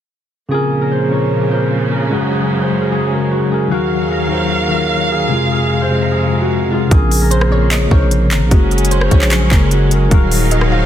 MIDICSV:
0, 0, Header, 1, 7, 480
1, 0, Start_track
1, 0, Key_signature, -5, "minor"
1, 0, Tempo, 400000
1, 616, Time_signature, 4, 2, 24, 8
1, 13027, End_track
2, 0, Start_track
2, 0, Title_t, "Synth pluck"
2, 0, Program_c, 0, 84
2, 8769, Note_on_c, 0, 72, 86
2, 9000, Note_off_c, 0, 72, 0
2, 9021, Note_on_c, 0, 73, 77
2, 9247, Note_off_c, 0, 73, 0
2, 9256, Note_on_c, 0, 75, 88
2, 9484, Note_off_c, 0, 75, 0
2, 9493, Note_on_c, 0, 73, 82
2, 10171, Note_off_c, 0, 73, 0
2, 10693, Note_on_c, 0, 72, 78
2, 10923, Note_off_c, 0, 72, 0
2, 10935, Note_on_c, 0, 73, 87
2, 11612, Note_off_c, 0, 73, 0
2, 12620, Note_on_c, 0, 75, 78
2, 12846, Note_off_c, 0, 75, 0
2, 12862, Note_on_c, 0, 77, 81
2, 13027, Note_off_c, 0, 77, 0
2, 13027, End_track
3, 0, Start_track
3, 0, Title_t, "Harp"
3, 0, Program_c, 1, 46
3, 615, Note_on_c, 1, 68, 114
3, 975, Note_on_c, 1, 70, 83
3, 1096, Note_on_c, 1, 72, 84
3, 1335, Note_on_c, 1, 73, 82
3, 1407, Note_off_c, 1, 72, 0
3, 1815, Note_on_c, 1, 72, 83
3, 1887, Note_off_c, 1, 73, 0
3, 2292, Note_off_c, 1, 70, 0
3, 2297, Note_on_c, 1, 70, 70
3, 2536, Note_on_c, 1, 66, 72
3, 2772, Note_off_c, 1, 68, 0
3, 2777, Note_on_c, 1, 68, 72
3, 3130, Note_off_c, 1, 72, 0
3, 3135, Note_on_c, 1, 72, 73
3, 3371, Note_off_c, 1, 70, 0
3, 3376, Note_on_c, 1, 70, 67
3, 3490, Note_off_c, 1, 68, 0
3, 3495, Note_on_c, 1, 68, 84
3, 3971, Note_off_c, 1, 66, 0
3, 3976, Note_on_c, 1, 66, 76
3, 4211, Note_off_c, 1, 68, 0
3, 4216, Note_on_c, 1, 68, 74
3, 4450, Note_off_c, 1, 66, 0
3, 4455, Note_on_c, 1, 66, 109
3, 4810, Note_off_c, 1, 68, 0
3, 4815, Note_on_c, 1, 68, 71
3, 4929, Note_off_c, 1, 70, 0
3, 4934, Note_on_c, 1, 70, 81
3, 5171, Note_off_c, 1, 72, 0
3, 5176, Note_on_c, 1, 72, 74
3, 5651, Note_off_c, 1, 70, 0
3, 5656, Note_on_c, 1, 70, 81
3, 6130, Note_off_c, 1, 68, 0
3, 6135, Note_on_c, 1, 68, 81
3, 6378, Note_on_c, 1, 65, 82
3, 6450, Note_off_c, 1, 66, 0
3, 6609, Note_off_c, 1, 68, 0
3, 6614, Note_on_c, 1, 68, 85
3, 6971, Note_off_c, 1, 72, 0
3, 6976, Note_on_c, 1, 72, 80
3, 7214, Note_off_c, 1, 70, 0
3, 7218, Note_on_c, 1, 70, 75
3, 7331, Note_off_c, 1, 68, 0
3, 7335, Note_on_c, 1, 68, 84
3, 7695, Note_on_c, 1, 66, 72
3, 7767, Note_off_c, 1, 65, 0
3, 8056, Note_on_c, 1, 65, 93
3, 8128, Note_off_c, 1, 66, 0
3, 8291, Note_off_c, 1, 68, 0
3, 8295, Note_on_c, 1, 68, 117
3, 8652, Note_off_c, 1, 70, 0
3, 8657, Note_on_c, 1, 70, 89
3, 8772, Note_off_c, 1, 72, 0
3, 8777, Note_on_c, 1, 72, 87
3, 9017, Note_on_c, 1, 73, 82
3, 9089, Note_off_c, 1, 72, 0
3, 9496, Note_on_c, 1, 72, 85
3, 9568, Note_off_c, 1, 73, 0
3, 9971, Note_off_c, 1, 70, 0
3, 9976, Note_on_c, 1, 70, 72
3, 10215, Note_on_c, 1, 66, 78
3, 10287, Note_off_c, 1, 65, 0
3, 10452, Note_off_c, 1, 68, 0
3, 10456, Note_on_c, 1, 68, 79
3, 10812, Note_off_c, 1, 72, 0
3, 10817, Note_on_c, 1, 72, 75
3, 11052, Note_off_c, 1, 70, 0
3, 11056, Note_on_c, 1, 70, 70
3, 11174, Note_off_c, 1, 68, 0
3, 11179, Note_on_c, 1, 68, 93
3, 11653, Note_off_c, 1, 66, 0
3, 11658, Note_on_c, 1, 66, 77
3, 11894, Note_off_c, 1, 68, 0
3, 11898, Note_on_c, 1, 68, 79
3, 12131, Note_off_c, 1, 66, 0
3, 12136, Note_on_c, 1, 66, 118
3, 12491, Note_off_c, 1, 68, 0
3, 12496, Note_on_c, 1, 68, 73
3, 12610, Note_off_c, 1, 70, 0
3, 12615, Note_on_c, 1, 70, 89
3, 12851, Note_off_c, 1, 72, 0
3, 12856, Note_on_c, 1, 72, 78
3, 13027, Note_off_c, 1, 66, 0
3, 13027, Note_off_c, 1, 68, 0
3, 13027, Note_off_c, 1, 70, 0
3, 13027, Note_off_c, 1, 72, 0
3, 13027, End_track
4, 0, Start_track
4, 0, Title_t, "Tine electric piano"
4, 0, Program_c, 2, 4
4, 584, Note_on_c, 2, 49, 107
4, 607, Note_on_c, 2, 60, 85
4, 630, Note_on_c, 2, 65, 84
4, 653, Note_on_c, 2, 70, 101
4, 853, Control_c, 2, 64, 127
4, 1105, Note_off_c, 2, 49, 0
4, 1116, Note_off_c, 2, 60, 0
4, 1128, Note_off_c, 2, 65, 0
4, 1139, Note_off_c, 2, 70, 0
4, 1303, Note_on_c, 2, 49, 72
4, 1326, Note_on_c, 2, 60, 58
4, 1349, Note_on_c, 2, 65, 68
4, 1372, Note_on_c, 2, 70, 73
4, 1656, Note_off_c, 2, 49, 0
4, 1667, Note_off_c, 2, 60, 0
4, 1679, Note_off_c, 2, 65, 0
4, 1690, Note_off_c, 2, 70, 0
4, 1782, Note_on_c, 2, 49, 68
4, 1806, Note_on_c, 2, 60, 67
4, 1828, Note_on_c, 2, 65, 66
4, 1851, Note_on_c, 2, 70, 77
4, 2304, Note_off_c, 2, 49, 0
4, 2316, Note_off_c, 2, 60, 0
4, 2327, Note_off_c, 2, 65, 0
4, 2338, Note_off_c, 2, 70, 0
4, 2501, Note_on_c, 2, 49, 98
4, 2524, Note_on_c, 2, 56, 90
4, 2547, Note_on_c, 2, 66, 94
4, 2552, Control_c, 2, 64, 0
4, 2571, Note_on_c, 2, 68, 100
4, 2767, Control_c, 2, 64, 127
4, 3023, Note_off_c, 2, 49, 0
4, 3035, Note_off_c, 2, 56, 0
4, 3046, Note_off_c, 2, 66, 0
4, 3058, Note_off_c, 2, 68, 0
4, 3221, Note_on_c, 2, 49, 71
4, 3244, Note_on_c, 2, 56, 74
4, 3267, Note_on_c, 2, 66, 64
4, 3290, Note_on_c, 2, 68, 79
4, 3575, Note_off_c, 2, 49, 0
4, 3586, Note_off_c, 2, 56, 0
4, 3598, Note_off_c, 2, 66, 0
4, 3609, Note_off_c, 2, 68, 0
4, 3701, Note_on_c, 2, 49, 69
4, 3725, Note_on_c, 2, 56, 62
4, 3748, Note_on_c, 2, 66, 61
4, 3771, Note_on_c, 2, 70, 79
4, 4055, Note_off_c, 2, 49, 0
4, 4067, Note_off_c, 2, 56, 0
4, 4078, Note_off_c, 2, 66, 0
4, 4090, Note_off_c, 2, 70, 0
4, 4180, Note_on_c, 2, 49, 69
4, 4203, Note_on_c, 2, 56, 69
4, 4227, Note_on_c, 2, 66, 65
4, 4249, Note_on_c, 2, 70, 82
4, 4366, Note_off_c, 2, 49, 0
4, 4378, Note_off_c, 2, 56, 0
4, 4390, Note_off_c, 2, 66, 0
4, 4401, Note_off_c, 2, 70, 0
4, 4420, Note_on_c, 2, 51, 92
4, 4442, Note_on_c, 2, 54, 86
4, 4465, Note_on_c, 2, 77, 92
4, 4471, Control_c, 2, 64, 0
4, 4489, Note_on_c, 2, 70, 106
4, 4706, Control_c, 2, 64, 127
4, 4942, Note_off_c, 2, 51, 0
4, 4954, Note_off_c, 2, 54, 0
4, 4965, Note_off_c, 2, 77, 0
4, 4977, Note_off_c, 2, 70, 0
4, 5139, Note_on_c, 2, 51, 73
4, 5163, Note_on_c, 2, 54, 62
4, 5185, Note_on_c, 2, 65, 55
4, 5209, Note_on_c, 2, 70, 80
4, 5494, Note_off_c, 2, 51, 0
4, 5506, Note_off_c, 2, 54, 0
4, 5517, Note_off_c, 2, 65, 0
4, 5529, Note_off_c, 2, 70, 0
4, 5622, Note_on_c, 2, 51, 74
4, 5645, Note_on_c, 2, 54, 66
4, 5667, Note_on_c, 2, 65, 68
4, 5690, Note_on_c, 2, 70, 84
4, 6143, Note_off_c, 2, 51, 0
4, 6155, Note_off_c, 2, 54, 0
4, 6166, Note_off_c, 2, 65, 0
4, 6178, Note_off_c, 2, 70, 0
4, 6341, Note_on_c, 2, 48, 99
4, 6364, Note_on_c, 2, 56, 80
4, 6387, Note_on_c, 2, 65, 88
4, 6390, Control_c, 2, 64, 0
4, 6410, Note_on_c, 2, 68, 107
4, 6641, Control_c, 2, 64, 127
4, 6863, Note_off_c, 2, 48, 0
4, 6875, Note_off_c, 2, 56, 0
4, 6886, Note_off_c, 2, 65, 0
4, 6897, Note_off_c, 2, 68, 0
4, 7061, Note_on_c, 2, 48, 81
4, 7084, Note_on_c, 2, 56, 77
4, 7107, Note_on_c, 2, 65, 69
4, 7130, Note_on_c, 2, 68, 73
4, 7415, Note_off_c, 2, 48, 0
4, 7426, Note_off_c, 2, 56, 0
4, 7438, Note_off_c, 2, 65, 0
4, 7450, Note_off_c, 2, 68, 0
4, 7542, Note_on_c, 2, 48, 75
4, 7565, Note_on_c, 2, 56, 64
4, 7588, Note_on_c, 2, 65, 66
4, 7610, Note_on_c, 2, 68, 82
4, 7895, Note_off_c, 2, 48, 0
4, 7907, Note_off_c, 2, 56, 0
4, 7918, Note_off_c, 2, 65, 0
4, 7930, Note_off_c, 2, 68, 0
4, 8021, Note_on_c, 2, 48, 76
4, 8044, Note_on_c, 2, 56, 68
4, 8067, Note_on_c, 2, 65, 65
4, 8090, Note_on_c, 2, 68, 80
4, 8206, Note_off_c, 2, 48, 0
4, 8218, Note_off_c, 2, 56, 0
4, 8230, Note_off_c, 2, 65, 0
4, 8241, Note_off_c, 2, 68, 0
4, 8263, Note_on_c, 2, 49, 114
4, 8286, Note_on_c, 2, 60, 90
4, 8308, Control_c, 2, 64, 0
4, 8309, Note_on_c, 2, 65, 89
4, 8332, Note_on_c, 2, 70, 103
4, 8515, Control_c, 2, 64, 127
4, 8784, Note_off_c, 2, 49, 0
4, 8796, Note_off_c, 2, 60, 0
4, 8807, Note_off_c, 2, 65, 0
4, 8819, Note_off_c, 2, 70, 0
4, 8982, Note_on_c, 2, 49, 77
4, 9005, Note_on_c, 2, 60, 61
4, 9028, Note_on_c, 2, 65, 70
4, 9051, Note_on_c, 2, 70, 80
4, 9336, Note_off_c, 2, 49, 0
4, 9347, Note_off_c, 2, 60, 0
4, 9358, Note_off_c, 2, 65, 0
4, 9370, Note_off_c, 2, 70, 0
4, 9462, Note_on_c, 2, 49, 71
4, 9486, Note_on_c, 2, 48, 72
4, 9508, Note_on_c, 2, 65, 71
4, 9531, Note_on_c, 2, 70, 88
4, 9984, Note_off_c, 2, 49, 0
4, 9995, Note_off_c, 2, 48, 0
4, 10007, Note_off_c, 2, 65, 0
4, 10018, Note_off_c, 2, 70, 0
4, 10182, Note_on_c, 2, 49, 105
4, 10204, Note_on_c, 2, 56, 95
4, 10228, Note_on_c, 2, 66, 98
4, 10232, Control_c, 2, 64, 0
4, 10251, Note_on_c, 2, 68, 104
4, 10412, Control_c, 2, 64, 127
4, 10703, Note_off_c, 2, 49, 0
4, 10715, Note_off_c, 2, 56, 0
4, 10727, Note_off_c, 2, 66, 0
4, 10738, Note_off_c, 2, 68, 0
4, 10901, Note_on_c, 2, 49, 76
4, 10924, Note_on_c, 2, 56, 80
4, 10948, Note_on_c, 2, 66, 70
4, 10970, Note_on_c, 2, 68, 82
4, 11255, Note_off_c, 2, 49, 0
4, 11267, Note_off_c, 2, 56, 0
4, 11278, Note_off_c, 2, 66, 0
4, 11290, Note_off_c, 2, 68, 0
4, 11382, Note_on_c, 2, 49, 72
4, 11405, Note_on_c, 2, 56, 63
4, 11428, Note_on_c, 2, 66, 67
4, 11451, Note_on_c, 2, 70, 88
4, 11735, Note_off_c, 2, 49, 0
4, 11747, Note_off_c, 2, 56, 0
4, 11758, Note_off_c, 2, 66, 0
4, 11770, Note_off_c, 2, 70, 0
4, 11862, Note_on_c, 2, 49, 77
4, 11885, Note_on_c, 2, 56, 72
4, 11908, Note_on_c, 2, 66, 71
4, 11931, Note_on_c, 2, 70, 85
4, 12047, Note_off_c, 2, 49, 0
4, 12059, Note_off_c, 2, 56, 0
4, 12070, Note_off_c, 2, 66, 0
4, 12082, Note_off_c, 2, 70, 0
4, 12102, Note_on_c, 2, 51, 98
4, 12124, Note_on_c, 2, 54, 92
4, 12148, Note_on_c, 2, 77, 94
4, 12153, Control_c, 2, 64, 0
4, 12171, Note_on_c, 2, 70, 115
4, 12364, Control_c, 2, 64, 127
4, 12624, Note_off_c, 2, 51, 0
4, 12635, Note_off_c, 2, 54, 0
4, 12647, Note_off_c, 2, 77, 0
4, 12658, Note_off_c, 2, 70, 0
4, 12821, Note_on_c, 2, 51, 79
4, 12844, Note_on_c, 2, 54, 64
4, 12867, Note_on_c, 2, 65, 60
4, 12890, Note_on_c, 2, 70, 82
4, 13027, Note_off_c, 2, 51, 0
4, 13027, Note_off_c, 2, 54, 0
4, 13027, Note_off_c, 2, 65, 0
4, 13027, Note_off_c, 2, 70, 0
4, 13027, End_track
5, 0, Start_track
5, 0, Title_t, "String section"
5, 0, Program_c, 3, 48
5, 617, Note_on_c, 3, 46, 82
5, 617, Note_on_c, 3, 49, 91
5, 617, Note_on_c, 3, 53, 72
5, 617, Note_on_c, 3, 58, 72
5, 2517, Note_off_c, 3, 46, 0
5, 2517, Note_off_c, 3, 53, 0
5, 2517, Note_off_c, 3, 58, 0
5, 2535, Note_on_c, 3, 56, 73
5, 2536, Note_on_c, 3, 42, 84
5, 2536, Note_on_c, 3, 54, 75
5, 4418, Note_off_c, 3, 49, 0
5, 4436, Note_off_c, 3, 56, 0
5, 4437, Note_off_c, 3, 42, 0
5, 4437, Note_off_c, 3, 54, 0
5, 4455, Note_on_c, 3, 39, 82
5, 4455, Note_on_c, 3, 51, 76
5, 4455, Note_on_c, 3, 54, 76
5, 4455, Note_on_c, 3, 77, 94
5, 6356, Note_off_c, 3, 39, 0
5, 6356, Note_off_c, 3, 51, 0
5, 6356, Note_off_c, 3, 54, 0
5, 6376, Note_on_c, 3, 41, 83
5, 6376, Note_on_c, 3, 48, 76
5, 6376, Note_on_c, 3, 56, 75
5, 8257, Note_off_c, 3, 77, 0
5, 8277, Note_off_c, 3, 41, 0
5, 8277, Note_off_c, 3, 48, 0
5, 8277, Note_off_c, 3, 56, 0
5, 8296, Note_on_c, 3, 46, 87
5, 8296, Note_on_c, 3, 58, 81
5, 10197, Note_off_c, 3, 46, 0
5, 10197, Note_off_c, 3, 58, 0
5, 10217, Note_on_c, 3, 54, 84
5, 10217, Note_on_c, 3, 56, 83
5, 10217, Note_on_c, 3, 61, 95
5, 12117, Note_off_c, 3, 54, 0
5, 12117, Note_off_c, 3, 56, 0
5, 12117, Note_off_c, 3, 61, 0
5, 12136, Note_on_c, 3, 51, 90
5, 12136, Note_on_c, 3, 54, 96
5, 12136, Note_on_c, 3, 63, 79
5, 12136, Note_on_c, 3, 77, 80
5, 13027, Note_off_c, 3, 51, 0
5, 13027, Note_off_c, 3, 54, 0
5, 13027, Note_off_c, 3, 63, 0
5, 13027, Note_off_c, 3, 77, 0
5, 13027, End_track
6, 0, Start_track
6, 0, Title_t, "808-style bass"
6, 0, Program_c, 4, 38
6, 8296, Note_on_c, 4, 34, 111
6, 9448, Note_off_c, 4, 34, 0
6, 9496, Note_on_c, 4, 34, 108
6, 9976, Note_on_c, 4, 32, 102
6, 9994, Note_off_c, 4, 34, 0
6, 10097, Note_on_c, 4, 34, 102
6, 10115, Note_off_c, 4, 32, 0
6, 10211, Note_off_c, 4, 34, 0
6, 10216, Note_on_c, 4, 30, 109
6, 10907, Note_off_c, 4, 30, 0
6, 10936, Note_on_c, 4, 34, 104
6, 11397, Note_off_c, 4, 34, 0
6, 11416, Note_on_c, 4, 30, 104
6, 12107, Note_off_c, 4, 30, 0
6, 12136, Note_on_c, 4, 27, 111
6, 13027, Note_off_c, 4, 27, 0
6, 13027, End_track
7, 0, Start_track
7, 0, Title_t, "Drums"
7, 8296, Note_on_c, 9, 36, 124
7, 8296, Note_on_c, 9, 42, 76
7, 8416, Note_off_c, 9, 36, 0
7, 8416, Note_off_c, 9, 42, 0
7, 8538, Note_on_c, 9, 46, 84
7, 8658, Note_off_c, 9, 46, 0
7, 8776, Note_on_c, 9, 42, 84
7, 8896, Note_off_c, 9, 42, 0
7, 8897, Note_on_c, 9, 37, 96
7, 9017, Note_off_c, 9, 37, 0
7, 9255, Note_on_c, 9, 42, 83
7, 9257, Note_on_c, 9, 39, 123
7, 9375, Note_off_c, 9, 42, 0
7, 9377, Note_off_c, 9, 39, 0
7, 9496, Note_on_c, 9, 36, 98
7, 9616, Note_off_c, 9, 36, 0
7, 9736, Note_on_c, 9, 42, 66
7, 9856, Note_off_c, 9, 42, 0
7, 9974, Note_on_c, 9, 42, 74
7, 9976, Note_on_c, 9, 39, 93
7, 10094, Note_off_c, 9, 42, 0
7, 10096, Note_off_c, 9, 39, 0
7, 10216, Note_on_c, 9, 36, 127
7, 10216, Note_on_c, 9, 42, 78
7, 10336, Note_off_c, 9, 36, 0
7, 10336, Note_off_c, 9, 42, 0
7, 10456, Note_on_c, 9, 42, 50
7, 10536, Note_off_c, 9, 42, 0
7, 10536, Note_on_c, 9, 42, 64
7, 10616, Note_off_c, 9, 42, 0
7, 10616, Note_on_c, 9, 42, 81
7, 10696, Note_off_c, 9, 42, 0
7, 10696, Note_on_c, 9, 42, 81
7, 10816, Note_off_c, 9, 42, 0
7, 10817, Note_on_c, 9, 37, 100
7, 10936, Note_on_c, 9, 36, 97
7, 10936, Note_on_c, 9, 42, 75
7, 10937, Note_off_c, 9, 37, 0
7, 11056, Note_off_c, 9, 36, 0
7, 11056, Note_off_c, 9, 42, 0
7, 11057, Note_on_c, 9, 39, 73
7, 11176, Note_on_c, 9, 42, 82
7, 11177, Note_off_c, 9, 39, 0
7, 11177, Note_on_c, 9, 39, 119
7, 11296, Note_off_c, 9, 42, 0
7, 11297, Note_off_c, 9, 39, 0
7, 11416, Note_on_c, 9, 36, 94
7, 11416, Note_on_c, 9, 39, 91
7, 11536, Note_off_c, 9, 36, 0
7, 11536, Note_off_c, 9, 39, 0
7, 11655, Note_on_c, 9, 42, 66
7, 11775, Note_off_c, 9, 42, 0
7, 11895, Note_on_c, 9, 42, 75
7, 12015, Note_off_c, 9, 42, 0
7, 12136, Note_on_c, 9, 36, 127
7, 12136, Note_on_c, 9, 42, 78
7, 12256, Note_off_c, 9, 36, 0
7, 12256, Note_off_c, 9, 42, 0
7, 12378, Note_on_c, 9, 46, 83
7, 12498, Note_off_c, 9, 46, 0
7, 12616, Note_on_c, 9, 42, 85
7, 12736, Note_off_c, 9, 42, 0
7, 12737, Note_on_c, 9, 37, 95
7, 12857, Note_off_c, 9, 37, 0
7, 13027, End_track
0, 0, End_of_file